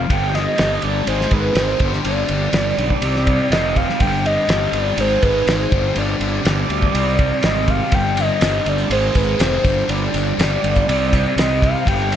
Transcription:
Already playing: F5
0.08 G1 G2 D3 G3 C4 G4 G5, kick, ride
0.33 D3 G3 D#5, snare, ride
0.56 G1 G2 D3 G3, snare, ride
0.82 G1 D3 G3 D5, ride
1.05 G#1 G#2 D#3 G#3 C5, ride
1.10 G#3 D#4 G#4
1.21 snare
1.30 G#1 D#3 G#3 B4, kick, ride
1.54 G#1 G#2 D#3 G#3 C5, snare, ride
1.79 G1 G2 D3 G3 D4 G4, kick, ride
1.93 snare
2.04 G1 G2 D3 G3 D5, ride
2.28 G1 D3 G3, ride
2.53 G1 G2 D3 G3, snare, ride
2.78 B1 D3 G3, ride
2.90 kick
3.01 C2 C3 G3 C4 D#4, ride
3.16 snare
3.27 G3 C4, kick, ride
3.50 F1 C3 G3 C4 D#5, snare, ride
3.76 F5, kick, ride
3.89 snare
4.00 G1 G2 D3 G3 G4 G5, kick, ride
4.26 D3 G3 D#5, ride
4.48 G1 G2 D3 G3, snare, ride
4.72 G1 D3 G3 D5, ride
4.97 G#1 G#2 D#3 G#3 D#4 G#4 C5, ride
5.22 G#1 D#3 G#3 B4, kick, ride
5.47 G#1 G#2 D#3 G#3 C5, snare, ride
5.71 G1 G2 D3 G3 D4 G4, kick, ride
5.95 G1 G2 D3 G3 D5, ride
6.19 G1 D3 G3, ride
6.43 G1 G2 D3 G3, snare, ride
6.68 D2 D3 G3, ride
6.82 kick
6.92 C2 C3 G3 C4 D#4, ride
7.16 G3 C4, kick, ride
7.42 G#1 C3 G3 C4 D#5, snare, ride
7.68 F5, kick, ride
7.91 G1 G2 D3 G3 G5, kick, ride
8.16 D3 G3 D#5, ride, tambourine
8.40 G1 G2 D3 G3, snare, ride, tambourine
8.64 G1 D3 G3, ride, tambourine
8.69 D5
8.78 tambourine
8.88 G#1 G#2 D#3 G#3 D#4 G#4 C5, ride, tambourine
9.13 G#1 D#3 G#3 B4, kick, ride, tambourine
9.38 F1 G#2 D#3 G#3 C5, snare, ride, tambourine
9.63 G1 G2 D3 G3 C4 D4 G4, kick, ride, tambourine
9.79 tambourine
9.88 G1 G2 D3 G3 D5, ride
10.13 G1 D3 G3, ride, tambourine
10.27 tambourine
10.38 G1 G2 D3 G3, snare, ride, tambourine
10.63 G1 D3 G3, ride, tambourine
10.76 kick, tambourine
10.88 C2 C3 G3 C4 D#4, ride, tambourine
11.12 G3 C4, kick, ride, tambourine
11.26 tambourine
11.36 C2 C3 G3 C4 D#5, snare, ride, tambourine
11.51 tambourine
11.62 F5, kick, ride
11.75 tambourine
11.84 G1 G2 D3 G3, kick, ride
11.88 D4 G5
12.09 D3 G3, ride, tambourine

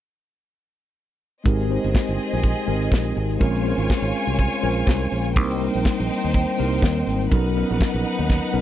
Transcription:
1.44 G#1 G#3 C4 D#4 G4 G#4 A#4 D#5, kick, closed hi-hat
1.61 closed hi-hat
1.69 G#3 C4 D#4 G4 C5
1.84 G1, closed hi-hat
1.95 kick, snare
2.07 G1, closed hi-hat
2.33 A#1, closed hi-hat
2.42 kick, closed hi-hat
2.58 closed hi-hat
2.66 G#1 G#3 C4 D#4 G4 A#4
2.82 closed hi-hat
2.92 A#1, kick, snare
3.05 closed hi-hat
3.17 G#1
3.30 closed hi-hat
3.39 A#1 G#3 C4 C#4 F4 A#4 C#5 G#5, kick, closed hi-hat
3.56 closed hi-hat
3.64 G#3 C#4 F4 G#4 C5, open hi-hat
3.71 A#4
3.78 G#1, closed hi-hat
3.90 kick, snare
4.02 G#1, closed hi-hat
4.14 open hi-hat
4.27 C2, closed hi-hat
4.37 kick, closed hi-hat
4.52 closed hi-hat
4.62 A#1 G#3 C#4 F4 A#4 C5, open hi-hat
4.77 closed hi-hat
4.87 C2, kick, snare
5.00 closed hi-hat
5.11 A#1, open hi-hat
5.25 closed hi-hat
5.35 C2 G3 A#3 C4 D#4 A#4 C5 G5, kick, closed hi-hat
5.50 closed hi-hat
5.60 G3 A#3 C4 D4 A#4, open hi-hat
5.68 D#4
5.74 A#1, closed hi-hat
5.85 kick, snare
5.98 A#1, closed hi-hat
6.10 open hi-hat
6.23 D#2, closed hi-hat
6.33 kick, closed hi-hat
6.48 closed hi-hat
6.57 C2 G3 A#3 C4 D#4 A#4, open hi-hat
6.72 closed hi-hat
6.82 D#2, kick, snare
6.95 closed hi-hat
7.07 G#1, open hi-hat
7.21 closed hi-hat
7.30 B1 F#3 B3 C#4 D#4 A#4 B4 F#5, kick, closed hi-hat
7.46 closed hi-hat
7.55 F#3 B3 C#4 D#4 A#4, open hi-hat
7.70 A#1, closed hi-hat
7.81 kick, snare
7.94 A#1, closed hi-hat
8.05 open hi-hat
8.18 D#2, closed hi-hat
8.30 kick, snare
8.52 B1 F#3 B3 C#4 D#4 A#4

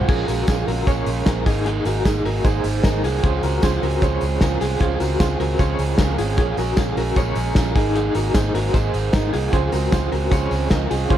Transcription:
Already playing: F#4 G#4 A#4 C5
0.08 A#1 A#2 F3 G#3 C#4 F4 G#4 A#4, kick, crash, tambourine
0.28 A#1 G#3 C#4 F4 F#4 A#4, open hi-hat, tambourine
0.47 A#1 F3 G#3 C#4 F4 G#4 A#4, kick, snare, closed hi-hat, tambourine
0.51 F4
0.67 A#1 G#3 C#4 F4 F#4 A#4, open hi-hat
0.86 A#1 A#2 F3 G#3 C#4 G#4 A#4 C#5, kick, closed hi-hat, tambourine
0.90 F4
1.06 A#1 G#3 C#4 F4, open hi-hat, tambourine
1.25 A#1 F3 G#3 C#4 F4 G#4 A#4 C5, kick, snare, closed hi-hat, tambourine
1.30 F4
1.45 G#1 D#4 G#4 A#4, kick, open hi-hat, tambourine
1.49 A#3
1.66 G#3 A#3 D#4 G#4, closed hi-hat
1.85 G#1 D#4 F#4 G#4 A#4, open hi-hat, tambourine
1.89 A#3
2.05 G#1 G#3 A#3 D#4 G#4 A#4, kick, snare, closed hi-hat, tambourine
2.09 G#4
2.25 G#1 A#3 D#4 F#4 G#4 A#4, open hi-hat
2.44 G#1 G#3 A#3 D#4 G#4 C5, kick, closed hi-hat, tambourine
2.64 G#1 A#3 D#4 G#4, open hi-hat, tambourine
2.83 G#1 G#3 A#3 D#4 G#4 A#4, kick, snare, closed hi-hat, tambourine
3.03 C2 A#3 D#4 F4 G#4, open hi-hat, tambourine
3.23 C#2 C#3 F3 G#3 C4 C#4 F4 G#4 C5, kick, closed hi-hat, tambourine
3.43 C#2 G#3 C4 F#4 G#4 A#4, open hi-hat, tambourine
3.62 C#2 F3 G#3 C4 C#4 F4 G#4 C5, kick, snare, closed hi-hat, tambourine
3.82 C#2 G#3 C4 F#4 G#4 A#4, open hi-hat, tambourine
4.01 C#2 C#3 F3 G#3 C4 C#4 F4 G#4 C5 C#5, kick, closed hi-hat, tambourine
4.21 C#2 G#3 C4 G#4, open hi-hat, tambourine
4.40 C#2 F3 G#3 C4 C#4 F4 G#4 A#4, kick, snare, closed hi-hat, tambourine
4.60 C2 G#3 C4 F4 G#4, open hi-hat, tambourine
4.79 C#2 C#3 F3 G#3 C4 C#4 F4 G#4 C5, kick, closed hi-hat
4.99 C#2 G#3 C4 F#4 G#4 A#4, open hi-hat, tambourine
5.19 C#2 F3 G#3 C4 C#4 F4 G#4 C5, kick, snare, closed hi-hat, tambourine
5.23 G#4
5.40 C#2 G#3 C4 F#4 G#4 A#4, open hi-hat
5.59 C#2 C#3 F3 G#3 C4 C#4 F4 G#4 C5 C#5, kick, closed hi-hat, tambourine
5.78 C#2 G#3 C4 G#4 A#5, open hi-hat, tambourine
5.98 C#2 F3 G#3 C4 C#4 F4 G#4 A#4 G#5, kick, snare, closed hi-hat, tambourine
6.18 G#1 G#3 C4 F4 G#4 C#5, open hi-hat, tambourine
6.37 A#1 A#2 F3 G#3 C#4 F4 G#4 A#4, kick, closed hi-hat, tambourine
6.57 A#1 G#3 C#4 F#4 G#4 A#4, open hi-hat, tambourine
6.76 A#1 F3 G#3 C#4 F4 G#4 A#4, kick, snare, closed hi-hat, tambourine
6.81 G#4
6.96 A#1 G#3 C#4 F#4 G#4 A#4, open hi-hat, tambourine
7.16 A#1 A#2 F3 G#3 C#4 G#4 A#4 C#5, kick, closed hi-hat, tambourine
7.36 A#1 G#3 C#4 G#4, open hi-hat, tambourine
7.55 A#1 F3 G#3 C#4 F4 G#4 A#4, kick, snare, closed hi-hat, tambourine
7.75 G#1 A#3 D#4 G#4 A#4, kick, open hi-hat, tambourine
7.95 G#3 A#3 D#4 G#4, closed hi-hat, tambourine
8.15 G#1 A#3 D#4 F#4 G#4 A#4, open hi-hat, tambourine
8.34 G#1 G#3 A#3 D#4 G#4 C5, kick, snare, closed hi-hat, tambourine
8.54 G#1 A#3 D#4 F#4 G#4 A#4, open hi-hat, tambourine
8.73 G#1 G#3 A#3 D#4 G#4 A#4 C5, kick, closed hi-hat, tambourine
8.94 G#1 A#3 D#4 G#4, open hi-hat, tambourine
9.13 G#1 G#3 A#3 D#4 G#4 A#4, kick, snare, closed hi-hat, tambourine
9.33 C2 A#3 D#4 F4 G#4, open hi-hat, tambourine
9.52 C#2 C#3 F3 G#3 C4 C#4 F4 G#4 C5, kick, closed hi-hat, tambourine
9.72 C#2 G#3 C4 F#4 G#4 A#4, open hi-hat, tambourine
9.91 C#2 F3 G#3 C4 C#4 F4 G#4 C5, kick, snare, closed hi-hat, tambourine
10.11 C#2 G#3 C4 F#4 G#4 A#4, open hi-hat
10.31 C#2 C#3 F3 G#3 C4 C#4 F4 G#4 C5 C#5, kick, closed hi-hat, tambourine
10.51 C#2 G#3 C4 G#4, open hi-hat, tambourine
10.70 C#2 F3 G#3 C4 C#4 F4 G#4 A#4 D#5, kick, snare, closed hi-hat, tambourine
10.90 C2 G#3 C4 F4 G#4, open hi-hat, tambourine
11.09 C#2 C#3 F3 G#3 C4 C#4 F4 G#4 C5, kick, closed hi-hat

